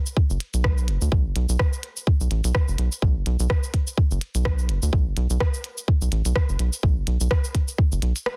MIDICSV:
0, 0, Header, 1, 3, 480
1, 0, Start_track
1, 0, Key_signature, 2, "minor"
1, 0, Tempo, 476190
1, 1127, Time_signature, 4, 2, 24, 8
1, 8433, End_track
2, 0, Start_track
2, 0, Title_t, "Analog synth bass"
2, 0, Program_c, 0, 38
2, 303, Note_on_c, 0, 30, 100
2, 384, Note_off_c, 0, 30, 0
2, 543, Note_on_c, 0, 35, 84
2, 887, Note_on_c, 0, 30, 102
2, 902, Note_off_c, 0, 35, 0
2, 992, Note_off_c, 0, 30, 0
2, 1023, Note_on_c, 0, 38, 90
2, 1104, Note_off_c, 0, 38, 0
2, 1128, Note_on_c, 0, 35, 99
2, 1264, Note_on_c, 0, 30, 81
2, 1279, Note_off_c, 0, 35, 0
2, 1344, Note_off_c, 0, 30, 0
2, 1368, Note_on_c, 0, 35, 94
2, 1472, Note_off_c, 0, 35, 0
2, 1503, Note_on_c, 0, 35, 100
2, 1583, Note_off_c, 0, 35, 0
2, 2223, Note_on_c, 0, 35, 84
2, 2304, Note_off_c, 0, 35, 0
2, 2327, Note_on_c, 0, 33, 91
2, 2432, Note_off_c, 0, 33, 0
2, 2463, Note_on_c, 0, 35, 102
2, 2543, Note_off_c, 0, 35, 0
2, 2703, Note_on_c, 0, 30, 76
2, 2784, Note_off_c, 0, 30, 0
2, 2808, Note_on_c, 0, 35, 80
2, 2912, Note_off_c, 0, 35, 0
2, 3048, Note_on_c, 0, 35, 102
2, 3184, Note_on_c, 0, 30, 86
2, 3199, Note_off_c, 0, 35, 0
2, 3264, Note_off_c, 0, 30, 0
2, 3289, Note_on_c, 0, 35, 97
2, 3393, Note_off_c, 0, 35, 0
2, 3424, Note_on_c, 0, 35, 101
2, 3504, Note_off_c, 0, 35, 0
2, 4145, Note_on_c, 0, 30, 99
2, 4224, Note_off_c, 0, 30, 0
2, 4383, Note_on_c, 0, 35, 83
2, 4728, Note_on_c, 0, 30, 102
2, 4743, Note_off_c, 0, 35, 0
2, 4832, Note_off_c, 0, 30, 0
2, 4864, Note_on_c, 0, 38, 90
2, 4944, Note_off_c, 0, 38, 0
2, 4968, Note_on_c, 0, 35, 97
2, 5105, Note_on_c, 0, 30, 85
2, 5120, Note_off_c, 0, 35, 0
2, 5184, Note_off_c, 0, 30, 0
2, 5209, Note_on_c, 0, 35, 95
2, 5313, Note_off_c, 0, 35, 0
2, 5344, Note_on_c, 0, 35, 105
2, 5424, Note_off_c, 0, 35, 0
2, 6063, Note_on_c, 0, 35, 86
2, 6143, Note_off_c, 0, 35, 0
2, 6168, Note_on_c, 0, 33, 96
2, 6272, Note_off_c, 0, 33, 0
2, 6303, Note_on_c, 0, 35, 100
2, 6384, Note_off_c, 0, 35, 0
2, 6542, Note_on_c, 0, 30, 81
2, 6623, Note_off_c, 0, 30, 0
2, 6647, Note_on_c, 0, 35, 84
2, 6752, Note_off_c, 0, 35, 0
2, 6887, Note_on_c, 0, 35, 100
2, 7023, Note_on_c, 0, 30, 83
2, 7038, Note_off_c, 0, 35, 0
2, 7103, Note_off_c, 0, 30, 0
2, 7128, Note_on_c, 0, 35, 95
2, 7232, Note_off_c, 0, 35, 0
2, 7264, Note_on_c, 0, 35, 98
2, 7344, Note_off_c, 0, 35, 0
2, 7983, Note_on_c, 0, 30, 101
2, 8063, Note_off_c, 0, 30, 0
2, 8087, Note_on_c, 0, 35, 97
2, 8192, Note_off_c, 0, 35, 0
2, 8433, End_track
3, 0, Start_track
3, 0, Title_t, "Drums"
3, 62, Note_on_c, 9, 69, 48
3, 163, Note_off_c, 9, 69, 0
3, 167, Note_on_c, 9, 36, 123
3, 268, Note_off_c, 9, 36, 0
3, 303, Note_on_c, 9, 69, 40
3, 403, Note_off_c, 9, 69, 0
3, 407, Note_on_c, 9, 42, 97
3, 508, Note_off_c, 9, 42, 0
3, 542, Note_on_c, 9, 42, 37
3, 542, Note_on_c, 9, 69, 51
3, 643, Note_off_c, 9, 42, 0
3, 643, Note_off_c, 9, 69, 0
3, 646, Note_on_c, 9, 37, 90
3, 647, Note_on_c, 9, 36, 127
3, 747, Note_off_c, 9, 37, 0
3, 748, Note_off_c, 9, 36, 0
3, 783, Note_on_c, 9, 69, 29
3, 884, Note_off_c, 9, 69, 0
3, 887, Note_on_c, 9, 42, 92
3, 988, Note_off_c, 9, 42, 0
3, 1023, Note_on_c, 9, 69, 53
3, 1124, Note_off_c, 9, 69, 0
3, 1127, Note_on_c, 9, 36, 116
3, 1228, Note_off_c, 9, 36, 0
3, 1367, Note_on_c, 9, 42, 91
3, 1468, Note_off_c, 9, 42, 0
3, 1502, Note_on_c, 9, 69, 51
3, 1603, Note_off_c, 9, 69, 0
3, 1607, Note_on_c, 9, 36, 125
3, 1607, Note_on_c, 9, 37, 91
3, 1707, Note_off_c, 9, 37, 0
3, 1708, Note_off_c, 9, 36, 0
3, 1743, Note_on_c, 9, 69, 40
3, 1844, Note_off_c, 9, 69, 0
3, 1846, Note_on_c, 9, 42, 95
3, 1947, Note_off_c, 9, 42, 0
3, 1983, Note_on_c, 9, 69, 52
3, 2083, Note_off_c, 9, 69, 0
3, 2087, Note_on_c, 9, 36, 124
3, 2188, Note_off_c, 9, 36, 0
3, 2222, Note_on_c, 9, 69, 42
3, 2323, Note_off_c, 9, 69, 0
3, 2327, Note_on_c, 9, 42, 89
3, 2427, Note_off_c, 9, 42, 0
3, 2462, Note_on_c, 9, 42, 36
3, 2462, Note_on_c, 9, 69, 50
3, 2563, Note_off_c, 9, 42, 0
3, 2563, Note_off_c, 9, 69, 0
3, 2566, Note_on_c, 9, 37, 88
3, 2567, Note_on_c, 9, 36, 120
3, 2667, Note_off_c, 9, 37, 0
3, 2668, Note_off_c, 9, 36, 0
3, 2703, Note_on_c, 9, 69, 29
3, 2804, Note_off_c, 9, 69, 0
3, 2806, Note_on_c, 9, 42, 95
3, 2907, Note_off_c, 9, 42, 0
3, 2942, Note_on_c, 9, 69, 53
3, 3043, Note_off_c, 9, 69, 0
3, 3047, Note_on_c, 9, 36, 111
3, 3148, Note_off_c, 9, 36, 0
3, 3287, Note_on_c, 9, 42, 89
3, 3387, Note_off_c, 9, 42, 0
3, 3422, Note_on_c, 9, 69, 53
3, 3523, Note_off_c, 9, 69, 0
3, 3527, Note_on_c, 9, 36, 120
3, 3527, Note_on_c, 9, 37, 93
3, 3628, Note_off_c, 9, 36, 0
3, 3628, Note_off_c, 9, 37, 0
3, 3663, Note_on_c, 9, 69, 42
3, 3764, Note_off_c, 9, 69, 0
3, 3767, Note_on_c, 9, 36, 60
3, 3767, Note_on_c, 9, 42, 91
3, 3868, Note_off_c, 9, 36, 0
3, 3868, Note_off_c, 9, 42, 0
3, 3903, Note_on_c, 9, 69, 54
3, 4003, Note_off_c, 9, 69, 0
3, 4007, Note_on_c, 9, 36, 119
3, 4108, Note_off_c, 9, 36, 0
3, 4143, Note_on_c, 9, 69, 42
3, 4243, Note_off_c, 9, 69, 0
3, 4247, Note_on_c, 9, 42, 91
3, 4348, Note_off_c, 9, 42, 0
3, 4383, Note_on_c, 9, 42, 35
3, 4383, Note_on_c, 9, 69, 52
3, 4484, Note_off_c, 9, 42, 0
3, 4484, Note_off_c, 9, 69, 0
3, 4487, Note_on_c, 9, 36, 118
3, 4487, Note_on_c, 9, 37, 87
3, 4588, Note_off_c, 9, 36, 0
3, 4588, Note_off_c, 9, 37, 0
3, 4623, Note_on_c, 9, 69, 30
3, 4724, Note_off_c, 9, 69, 0
3, 4728, Note_on_c, 9, 42, 89
3, 4828, Note_off_c, 9, 42, 0
3, 4863, Note_on_c, 9, 69, 54
3, 4964, Note_off_c, 9, 69, 0
3, 4968, Note_on_c, 9, 36, 112
3, 5068, Note_off_c, 9, 36, 0
3, 5207, Note_on_c, 9, 42, 88
3, 5308, Note_off_c, 9, 42, 0
3, 5343, Note_on_c, 9, 69, 54
3, 5444, Note_off_c, 9, 69, 0
3, 5447, Note_on_c, 9, 36, 115
3, 5448, Note_on_c, 9, 37, 97
3, 5548, Note_off_c, 9, 36, 0
3, 5549, Note_off_c, 9, 37, 0
3, 5583, Note_on_c, 9, 69, 46
3, 5684, Note_off_c, 9, 69, 0
3, 5687, Note_on_c, 9, 42, 90
3, 5788, Note_off_c, 9, 42, 0
3, 5822, Note_on_c, 9, 69, 55
3, 5923, Note_off_c, 9, 69, 0
3, 5927, Note_on_c, 9, 36, 114
3, 6028, Note_off_c, 9, 36, 0
3, 6063, Note_on_c, 9, 69, 46
3, 6164, Note_off_c, 9, 69, 0
3, 6167, Note_on_c, 9, 42, 92
3, 6268, Note_off_c, 9, 42, 0
3, 6303, Note_on_c, 9, 42, 36
3, 6303, Note_on_c, 9, 69, 55
3, 6404, Note_off_c, 9, 42, 0
3, 6404, Note_off_c, 9, 69, 0
3, 6407, Note_on_c, 9, 36, 114
3, 6407, Note_on_c, 9, 37, 93
3, 6507, Note_off_c, 9, 37, 0
3, 6508, Note_off_c, 9, 36, 0
3, 6542, Note_on_c, 9, 69, 31
3, 6643, Note_off_c, 9, 69, 0
3, 6646, Note_on_c, 9, 42, 88
3, 6747, Note_off_c, 9, 42, 0
3, 6782, Note_on_c, 9, 69, 56
3, 6883, Note_off_c, 9, 69, 0
3, 6887, Note_on_c, 9, 36, 114
3, 6988, Note_off_c, 9, 36, 0
3, 7126, Note_on_c, 9, 42, 90
3, 7227, Note_off_c, 9, 42, 0
3, 7263, Note_on_c, 9, 69, 55
3, 7364, Note_off_c, 9, 69, 0
3, 7366, Note_on_c, 9, 37, 99
3, 7367, Note_on_c, 9, 36, 119
3, 7467, Note_off_c, 9, 36, 0
3, 7467, Note_off_c, 9, 37, 0
3, 7502, Note_on_c, 9, 69, 45
3, 7603, Note_off_c, 9, 69, 0
3, 7606, Note_on_c, 9, 36, 60
3, 7607, Note_on_c, 9, 42, 91
3, 7707, Note_off_c, 9, 36, 0
3, 7708, Note_off_c, 9, 42, 0
3, 7742, Note_on_c, 9, 69, 55
3, 7843, Note_off_c, 9, 69, 0
3, 7846, Note_on_c, 9, 36, 120
3, 7947, Note_off_c, 9, 36, 0
3, 7983, Note_on_c, 9, 69, 46
3, 8084, Note_off_c, 9, 69, 0
3, 8086, Note_on_c, 9, 42, 91
3, 8187, Note_off_c, 9, 42, 0
3, 8223, Note_on_c, 9, 42, 35
3, 8223, Note_on_c, 9, 69, 55
3, 8324, Note_off_c, 9, 42, 0
3, 8324, Note_off_c, 9, 69, 0
3, 8328, Note_on_c, 9, 37, 95
3, 8429, Note_off_c, 9, 37, 0
3, 8433, End_track
0, 0, End_of_file